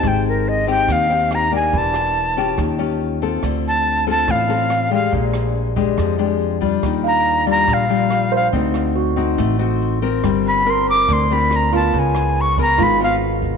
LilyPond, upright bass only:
\new Staff \with { instrumentName = "Upright bass" } { \clef bass \time 4/4 \key d \phrygian \tempo 4 = 141 aes,,2 ees,2 | e,,2 ees,2 | d,2 a,,2 | bes,,2 f,2 |
ees,2 bes,,2 | d,2 a,,2 | g,,2 d,2 | cis,2 gis,,2 | }